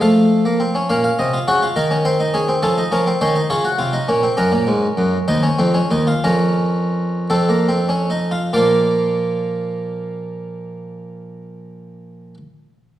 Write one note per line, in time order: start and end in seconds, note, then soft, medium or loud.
0.01 0.87 F3 medium
0.01 0.44 A3 medium
0.01 0.87 F5 medium
0.45 0.60 A#3 medium
0.60 0.74 C4 medium
0.75 0.88 C#4 medium
0.90 1.07 A#2 medium
0.90 1.32 C#4 medium
0.90 1.03 F5 medium
1.04 1.18 F5 medium
1.19 1.37 C3 medium
1.19 1.37 D#5 medium
1.33 1.47 F4 medium
1.48 1.66 C#3 medium
1.48 1.62 F#4 medium
1.48 1.66 C#5 loud
1.62 1.76 F4 medium
1.76 2.61 D#3 medium
1.76 1.91 D#4 medium
1.76 1.94 A#4 loud
1.91 2.05 C#4 medium
2.05 2.20 C4 medium
2.05 2.23 C5 medium
2.20 2.34 D#4 medium
2.34 2.48 C#4 medium
2.34 2.52 G#4 medium
2.48 2.63 C4 medium
2.62 2.81 F3 medium
2.62 2.77 C#4 medium
2.62 2.81 A4 loud
2.78 2.92 D#4 medium
2.92 3.10 F3 medium
2.92 3.06 C#4 medium
2.92 3.10 A#4 loud
3.07 3.21 C4 medium
3.21 3.39 D#3 medium
3.21 3.35 C#4 medium
3.21 3.39 C5 loud
3.36 3.50 D#4 medium
3.50 3.68 C#3 medium
3.50 3.64 F4 medium
3.50 4.34 C#5 loud
3.64 3.78 F#4 medium
3.78 3.97 C3 medium
3.78 3.93 F4 medium
3.93 4.07 D#4 medium
4.08 4.26 A#2 medium
4.08 4.22 C#4 medium
4.23 4.37 C4 medium
4.37 4.51 F#2 loud
4.37 5.24 C#4 medium
4.37 5.24 A#4 medium
4.52 4.66 A#2 loud
4.67 4.86 G#2 loud
4.97 5.16 F#2 loud
5.28 5.47 D#2 loud
5.28 5.43 D#4 medium
5.28 6.21 C5 medium
5.43 5.58 C#4 medium
5.59 5.79 F2 loud
5.59 5.74 C4 medium
5.74 5.90 C#4 medium
5.91 6.11 D#2 medium
5.91 6.07 D#4 medium
6.07 6.23 F4 medium
6.24 7.27 F2 medium
6.24 7.27 C#4 medium
6.24 7.27 A#4 medium
7.30 8.49 F2 medium
7.30 7.48 C4 medium
7.30 8.49 A4 medium
7.49 7.68 A#3 medium
7.68 7.88 C4 medium
7.89 8.09 C#4 medium
8.10 8.30 D#4 medium
8.31 8.52 F4 medium
8.53 12.34 A#2 medium
8.53 12.37 F3 medium
8.53 12.37 A#3 medium
8.53 12.34 F4 medium
8.53 12.34 D5 medium